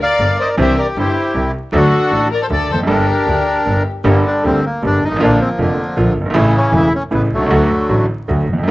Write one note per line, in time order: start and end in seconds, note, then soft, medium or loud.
0.02 0.56 A#4 medium
0.02 0.37 D5 medium
0.02 0.56 D5 medium
0.02 0.37 F5 medium
0.19 0.36 G1 medium
0.19 0.36 G2 medium
0.40 0.49 C5 medium
0.40 0.49 D#5 medium
0.57 0.74 C2 medium
0.57 0.74 C3 medium
0.57 0.74 E3 medium
0.57 0.74 C4 medium
0.57 0.74 D4 medium
0.57 0.74 G4 medium
0.57 0.98 G4 medium
0.57 0.77 C5 medium
0.57 0.78 E5 medium
0.78 0.86 A#4 medium
0.78 0.87 D5 medium
0.96 1.13 G1 medium
0.96 1.13 G2 medium
0.96 1.51 E4 medium
0.96 1.32 G4 medium
0.96 1.52 G4 medium
0.96 1.34 C5 medium
1.34 1.51 C2 medium
1.34 1.51 C3 medium
1.72 1.89 D2 medium
1.72 1.90 D2 medium
1.72 1.89 D3 medium
1.72 1.89 F#3 medium
1.72 1.89 A3 medium
1.72 1.89 D4 medium
1.72 2.28 D4 medium
1.72 2.28 F#4 medium
1.72 1.89 A4 medium
1.77 2.29 A4 loud
2.11 2.27 A1 medium
2.11 2.28 A1 medium
2.11 2.28 A2 medium
2.31 2.40 A#4 medium
2.31 2.42 D5 medium
2.42 2.46 A4 medium
2.42 2.47 C5 medium
2.50 2.66 D2 medium
2.50 2.66 D3 medium
2.50 2.69 A4 medium
2.50 2.71 D5 loud
2.69 2.88 F1 medium
2.69 2.79 A4 medium
2.69 2.80 C5 medium
2.74 2.79 E2 medium
2.79 2.84 F2 medium
2.83 2.88 F#2 medium
2.83 3.04 G3 medium
2.83 3.04 A#3 medium
2.87 3.04 G1 medium
2.87 3.05 G1 medium
2.87 3.04 G2 medium
2.87 3.04 D4 medium
2.87 3.83 D4 medium
2.87 3.82 G4 medium
2.87 3.04 A4 medium
2.87 3.83 A#4 medium
3.26 3.43 D2 soft
3.26 3.44 D2 medium
3.26 3.43 D3 medium
3.66 3.82 G1 medium
3.66 3.83 G1 medium
3.66 3.83 G2 soft
4.04 4.21 G1 medium
4.04 4.22 G1 medium
4.04 4.21 G2 medium
4.04 4.21 D3 medium
4.04 4.21 G3 medium
4.04 4.21 A#3 medium
4.04 4.21 G4 medium
4.08 4.61 D3 medium
4.08 4.61 G3 medium
4.08 4.17 A#3 medium
4.27 4.44 D4 medium
4.44 4.60 D2 medium
4.44 4.61 D2 medium
4.44 4.60 D3 medium
4.44 4.60 G3 soft
4.44 4.60 A#3 soft
4.44 4.65 C4 medium
4.44 4.60 G4 medium
4.66 4.83 A#3 medium
4.82 4.99 G1 medium
4.82 4.99 G2 medium
4.82 4.99 D3 medium
4.82 4.99 G3 soft
4.82 4.99 A#3 soft
4.82 4.99 G4 medium
4.86 5.04 D4 loud
5.02 5.20 G#1 medium
5.02 5.21 D#4 loud
5.07 5.11 G1 medium
5.12 5.16 G#1 medium
5.16 5.21 A1 medium
5.16 5.37 A#1 medium
5.16 5.37 A#2 medium
5.16 5.36 D3 medium
5.16 5.36 F3 medium
5.16 5.36 A#3 medium
5.16 5.37 F4 medium
5.21 5.37 A#1 loud
5.21 5.59 F3 medium
5.21 5.58 A#3 medium
5.21 5.40 D4 loud
5.41 5.49 C4 medium
5.58 5.75 F1 medium
5.58 5.75 F2 medium
5.58 5.75 D3 medium
5.58 6.13 D3 medium
5.58 5.75 F3 soft
5.58 6.13 F3 medium
5.58 5.75 A#3 soft
5.58 5.95 A#3 medium
5.58 5.75 F4 medium
5.96 6.13 A#1 medium
5.96 6.14 A#1 medium
5.96 6.13 A#2 medium
5.96 6.13 D3 medium
5.96 6.13 F3 soft
5.96 6.13 A#3 soft
5.96 6.13 F4 medium
6.17 6.35 G1 medium
6.21 6.26 F#1 medium
6.26 6.31 G1 medium
6.30 6.35 G#1 medium
6.30 6.51 A1 medium
6.30 6.51 A2 medium
6.30 6.51 C#3 medium
6.30 6.51 E3 medium
6.30 6.51 A3 medium
6.30 6.51 E4 medium
6.35 6.51 A1 loud
6.35 6.89 C#3 medium
6.35 6.89 E3 medium
6.35 6.46 A3 loud
6.57 6.74 C#4 loud
6.72 6.89 E1 medium
6.72 6.90 E1 medium
6.72 6.89 E2 medium
6.72 6.89 C#3 medium
6.72 6.89 E3 soft
6.72 6.89 A3 soft
6.72 6.89 E4 medium
6.76 6.93 E4 loud
6.95 7.03 C#4 medium
7.11 7.28 A1 medium
7.11 7.28 A2 medium
7.11 7.28 C#3 medium
7.11 7.28 E3 soft
7.11 7.28 A3 soft
7.11 7.22 B3 loud
7.11 7.28 E4 medium
7.32 7.41 B1 medium
7.32 7.50 C2 medium
7.32 8.06 D3 medium
7.32 8.06 F#3 medium
7.32 8.06 A3 medium
7.41 7.46 C2 medium
7.46 7.51 C#2 medium
7.50 7.67 D2 medium
7.50 7.67 D2 loud
7.50 7.67 D3 medium
7.50 7.67 F#3 medium
7.50 7.67 A3 medium
7.50 7.67 F#4 medium
7.89 8.05 A1 medium
7.89 8.06 A1 medium
7.89 8.06 A2 medium
7.89 8.06 D3 medium
7.89 8.06 F#3 soft
7.89 8.06 A3 soft
7.89 8.06 F#4 medium
8.28 8.45 D2 medium
8.28 8.45 D3 medium
8.28 8.45 F#3 soft
8.28 8.45 A3 soft
8.28 8.45 F#4 medium
8.48 8.66 F1 medium
8.53 8.58 E2 medium
8.58 8.62 F2 medium
8.63 8.71 G1 medium
8.63 8.67 F#2 medium
8.68 8.71 G2 medium
8.68 8.71 D3 medium
8.68 8.71 G3 medium